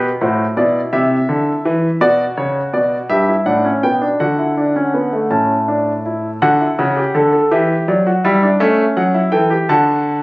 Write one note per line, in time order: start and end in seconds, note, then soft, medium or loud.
0.21 0.43 A2 medium
0.21 0.44 F#4 medium
0.21 0.44 C5 medium
0.57 0.79 B2 medium
0.57 1.97 E4 medium
0.57 0.79 D5 medium
0.93 1.15 C3 medium
0.93 1.98 E5 medium
1.29 1.51 D3 medium
1.65 1.88 E3 medium
2.01 2.24 B2 medium
2.01 3.06 F#4 medium
2.01 2.24 D5 medium
2.37 2.60 C#3 medium
2.37 2.60 C#5 medium
2.73 2.96 B2 medium
2.73 2.96 D5 medium
3.09 3.32 G2 medium
3.09 3.27 G4 medium
3.09 3.32 E5 medium
3.28 3.46 E4 medium
3.46 3.69 A2 medium
3.46 3.64 D4 medium
3.46 3.69 F#5 medium
3.65 3.83 C#4 medium
3.83 4.06 B2 medium
3.83 4.01 B3 medium
3.83 4.06 G5 medium
4.01 4.20 D4 medium
4.20 5.28 D3 medium
4.20 4.38 F#4 medium
4.20 5.28 F#5 medium
4.38 4.57 E4 medium
4.57 4.75 D4 soft
4.76 4.94 C#4 medium
4.94 5.12 B3 medium
5.13 5.31 A3 medium
5.31 6.38 A2 medium
5.31 5.54 C#4 medium
5.31 6.38 A5 medium
5.68 5.91 D4 medium
6.05 6.28 E4 medium
6.42 6.65 D3 medium
6.42 6.60 F#4 medium
6.42 7.48 F#5 medium
6.61 6.78 E4 medium
6.78 7.01 C#3 medium
6.78 6.96 F#4 medium
6.97 7.14 G4 medium
7.15 7.37 D3 medium
7.15 7.31 A4 medium
7.33 7.51 A4 medium
7.51 7.74 E3 medium
7.51 8.04 G4 medium
7.51 7.74 E5 medium
7.88 8.10 F#3 medium
7.88 8.11 D5 medium
8.07 8.24 F#4 medium
8.24 8.47 G3 medium
8.24 8.42 E4 medium
8.24 8.47 E5 medium
8.43 8.60 D4 medium
8.60 8.83 A3 loud
8.60 9.13 C#4 medium
8.60 8.83 E5 medium
8.97 9.19 F#3 medium
8.97 9.19 F#5 medium
9.14 9.32 E4 medium
9.32 9.55 E3 medium
9.32 9.50 A4 medium
9.32 9.55 G5 medium
9.50 9.68 G4 medium
9.69 10.23 D3 medium
9.69 10.23 F#4 medium
9.69 10.23 A5 medium